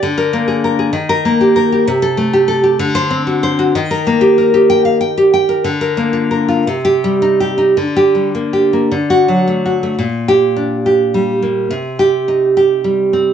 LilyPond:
\new Staff \with { instrumentName = "Nylon-string guitar" } { \time 6/8 \key ees \lydian \tempo 4. = 64 << { r16 bes'8 r4 bes'8 r8. | \key g \minor r16 a'8 r4 c''8 r8. | r4. g''8 r4 | r16 bes'8 r4 g'8 r8. |
r16 g'8 r4 fis'8 r8. | r8 g'8. r4. r16 | r8 g'8. r4. r16 | } \\ { d8 bes16 aes'16 bes'16 aes'16 ees8 bes16 g'16 bes'16 g'16 | c8 a16 g'16 a'16 g'16 d8 c'16 fis'16 c''16 fis'16 | ees16 bes'16 bes16 g'16 bes'16 g'8 f''16 g''16 g'16 g''16 bes'16 | d8 bes16 f'16 bes'16 f'16 c8 g16 ees'16 g'16 ees'16 |
d8 g16 bes16 g'16 bes16 d8 fis16 a16 fis'16 a16 | bes,4 d'8 g'8 g8 bes8 | c4 ees'8 g'8 g8 c'8 | } >> }